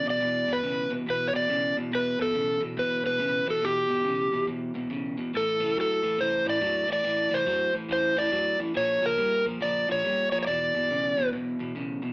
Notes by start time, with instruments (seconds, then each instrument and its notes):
0.05 upright bass B1, clean electric guitar E2 B2
0.10 electric slide guitar D5
0.21 upright bass E1, clean electric guitar E2 B2
0.47 upright bass G1, clean electric guitar E2 B2
0.53 electric slide guitar B4
0.63 upright bass B1, clean electric guitar E2 C#3
0.90 upright bass C2, clean electric guitar E2 B2
1.06 upright bass B1, clean electric guitar E2 B2, electric slide guitar B4
1.28 electric slide guitar C#5
1.33 upright bass B1, clean electric guitar E2 B2, electric slide guitar D5
1.49 upright bass B1, clean electric guitar E2 C#3
1.77 clean electric guitar E2 B2
1.92 upright bass E1, clean electric guitar E2 B2, electric slide guitar B4
2.19 upright bass G1, clean electric guitar E2 B2, electric slide guitar A4
2.34 upright bass B1, clean electric guitar E2 C#3
2.61 upright bass B1, clean electric guitar E2 B2
2.76 upright bass G1, clean electric guitar E2 B2, electric slide guitar B4
3.04 upright bass E1, clean electric guitar E2 B2, electric slide guitar B4
3.19 upright bass B1, clean electric guitar E2 C#3
3.46 upright bass B1, clean electric guitar E2 B2
3.50 electric slide guitar A4
3.61 upright bass E1, clean electric guitar E2 B2, electric slide guitar G4
3.88 upright bass G1, clean electric guitar E2 B2
4.04 upright bass B1, clean electric guitar E2 C#3
4.32 upright bass C2, clean electric guitar E2 B2
4.47 upright bass B1, clean electric guitar E2 B2
4.74 upright bass B1, clean electric guitar E2 B2
4.90 upright bass B1, clean electric guitar E2 C#3
5.17 upright bass G1, clean electric guitar E2 B2
5.33 upright bass A1, clean electric guitar A2 E3, electric slide guitar A4
5.60 upright bass C2, clean electric guitar A2 E3
5.75 upright bass E2, clean electric guitar A2 F#3
5.81 electric slide guitar A4
6.03 upright bass E2, clean electric guitar A2 E3
6.18 upright bass C2, clean electric guitar A2 E3, electric slide guitar C5
6.45 upright bass A1, clean electric guitar A2 E3
6.49 electric slide guitar D5
6.61 upright bass E2, clean electric guitar A2 F#3
6.87 upright bass E2, clean electric guitar A2 E3
6.93 electric slide guitar D5
7.03 upright bass A1, clean electric guitar A2 E3
7.31 upright bass C2, clean electric guitar A2 E3, electric slide guitar C5
7.46 upright bass E2, clean electric guitar A2 F#3
7.72 upright bass F#2, clean electric guitar A2 E3
7.89 upright bass E2, clean electric guitar A2 E3, electric slide guitar C5
8.15 upright bass E2, clean electric guitar A2 E3, electric slide guitar D5
8.31 upright bass E2, clean electric guitar A2 F#3
8.59 upright bass E2, clean electric guitar A2 E3
8.74 upright bass A#1, clean electric guitar A#2 F3, electric slide guitar C#5
9.02 upright bass C#2, clean electric guitar A#2 F3
9.06 electric slide guitar A#4
9.17 upright bass E2, clean electric guitar A#2 G3
9.44 upright bass E2, clean electric guitar A#2 F3
9.60 upright bass C#2, clean electric guitar A#2 F3, electric slide guitar D5
9.88 upright bass A#1, clean electric guitar A#2 F3, electric slide guitar C#5
10.04 upright bass E2, clean electric guitar A#2 G3
10.32 upright bass E2, clean electric guitar A#2 F3, electric slide guitar C#5
10.43 electric slide guitar C#5
10.47 upright bass E1, clean electric guitar E2 B2, electric slide guitar D5
10.74 upright bass G1, clean electric guitar E2 B2
10.89 upright bass B1, clean electric guitar E2 C#3
11.17 upright bass C2, clean electric guitar E2 B2
11.32 upright bass B1, clean electric guitar E2 B2
11.59 upright bass B1, clean electric guitar E2 B2
11.75 upright bass B1, clean electric guitar E2 C#3
12.02 upright bass B1, clean electric guitar E2 B2